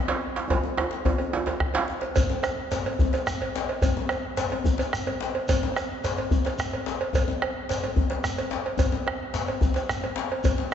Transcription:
0.08 cowbell, djembe slap
0.10 djembe slap, djembe tone
0.36 djembe slap
0.50 bombo low, cowbell, djembe slap, djembe tone, djembe bass
0.64 djembe slap, djembe tone
0.77 bombo rim, cowbell, djembe tone
0.91 bombo rim, djembe slap
1.05 bombo rim, bombo low, cowbell, djembe tone, djembe bass
1.18 bombo rim, cowbell, djembe tone
1.32 djembe slap, djembe tone
1.46 cowbell, djembe slap, djembe tone
1.60 bombo rim, bombo low
1.74 cowbell, djembe slap, djembe bass
1.88 bombo rim, djembe slap
2.01 cowbell, djembe slap
2.16 bombo low, cowbell, djembe bass, shekere
2.30 djembe slap, djembe tone
2.43 bombo rim, cowbell, shekere
2.57 djembe slap
2.72 bombo rim, cowbell, djembe slap, shekere
2.86 cowbell, djembe tone
2.99 bombo low, djembe bass, shekere
3.13 bombo rim, cowbell, djembe slap, shekere
3.27 bombo rim, djembe slap, shekere
3.41 bombo rim, cowbell, djembe tone
3.55 djembe slap, shekere
3.69 cowbell
3.82 bombo low, cowbell, djembe bass, shekere
3.97 djembe slap, djembe tone
4.09 bombo rim, cowbell, shekere
4.23 djembe slap
4.37 bombo rim, cowbell, djembe slap, shekere
4.50 cowbell, djembe tone
4.64 bombo low, djembe bass, shekere
4.78 bombo rim, cowbell, djembe slap, shekere
4.93 bombo rim, djembe slap, shekere
5.07 bombo rim, cowbell, djembe tone
5.20 djembe slap, shekere
5.35 cowbell
5.48 bombo low, cowbell, djembe bass, shekere
5.63 djembe slap, djembe tone
5.76 bombo rim, cowbell, shekere
5.90 djembe slap
6.04 bombo rim, cowbell, djembe slap, shekere
6.18 cowbell, djembe tone
6.31 bombo low, djembe bass, shekere
6.45 bombo rim, cowbell, djembe slap, shekere
6.58 bombo rim, djembe slap, shekere
6.73 bombo rim, cowbell, djembe tone
6.86 djembe slap, shekere
7.01 cowbell
7.13 bombo low, cowbell, djembe slap, djembe bass, shekere
7.28 djembe slap, djembe tone
7.42 bombo rim, cowbell, djembe slap
7.56 djembe slap
7.69 bombo rim, cowbell, djembe slap, shekere
7.83 cowbell, djembe slap, djembe tone
7.96 bombo low, djembe bass
8.10 cowbell, djembe slap
8.24 bombo rim, djembe slap, shekere
8.38 cowbell, djembe tone, shekere
8.51 bombo rim, djembe slap, shekere
8.66 cowbell
8.78 bombo low, cowbell, djembe bass, shekere
8.92 djembe slap, djembe tone
9.07 bombo rim, cowbell
9.20 djembe slap
9.34 bombo rim, djembe slap, shekere
9.48 cowbell, djembe tone
9.61 bombo low, djembe bass, shekere
9.74 bombo rim, cowbell, djembe slap, shekere
9.89 bombo rim, djembe slap, shekere
10.01 bombo rim, cowbell, djembe tone
10.16 djembe slap, shekere
10.32 cowbell
10.44 bombo low, cowbell, djembe bass, shekere
10.58 djembe slap, djembe tone

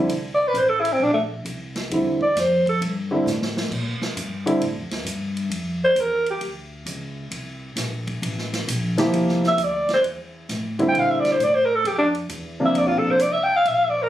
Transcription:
0.08 C2, ride
0.34 D5
0.48 B4
0.54 A1, hi-hat pedal, ride
0.58 C5
0.69 A4
0.80 E4
0.85 ride
0.93 C4
1.00 A#1 D4
1.14 A3
1.45 C2, hi-hat pedal, ride
1.76 snare, ride
1.90 E2 D3 G3 C4 E4, ride
2.21 D5, kick
2.35 F2, snare, hi-hat pedal, ride
2.40 C5
2.66 A4, kick, ride
2.81 G2, ride
3.11 D3 G3 C4 E4
3.26 A2, snare, hi-hat pedal
3.42 snare
3.57 snare
3.71 A#2, kick, crash
4.01 muted upright bass stroke, snare
4.16 G2, hi-hat pedal, ride
4.46 D3 G3 C4 E4, ride
4.61 A2, ride
4.76 F2
4.91 D2, snare, ride
5.05 G2, hi-hat pedal, ride
5.37 ride
5.50 F2, ride
5.84 C5
5.95 E2, hi-hat pedal, ride
6.00 A#4
6.26 ride
6.30 G4
6.41 D2, ride
6.86 C#2, hi-hat pedal, ride
7.31 C2, ride
7.76 A#1, snare, hi-hat pedal, ride
8.07 kick, ride
8.22 A1, ride
8.38 snare
8.53 snare, ride
8.68 A#1, hi-hat pedal, ride
8.98 F3 A#3 E4 G4, snare, ride
9.13 C2, ride
9.29 snare
9.43 snare
9.48 E5
9.58 D2, hi-hat pedal, ride
9.64 D5
9.89 snare, ride
9.94 C5
10.04 E2, ride
10.49 A2, snare, hi-hat pedal, ride
10.79 D3 G3 C4 E4, kick, ride
10.89 G5
10.94 A#2, ride
10.99 F5
11.10 E5
11.20 D5, muted upright bass stroke
11.25 snare, ride
11.32 C5
11.39 A2, hi-hat pedal, ride
11.44 D5
11.54 C5
11.65 A#4
11.75 A4
11.84 F2 G4, ride
11.99 D4
12.15 ride
12.29 E2, hi-hat pedal, ride
12.60 C3 F3 A#3 D4
12.66 E5
12.74 D2 D5, ride
12.88 A#1 F4
12.98 A4
13.05 A1
13.11 C5
13.19 C2 D5, hi-hat pedal, ride
13.32 E5
13.44 G5
13.56 F5
13.65 A#1 E5, ride
13.75 F5
13.84 E5
13.90 D5
14.03 A#4

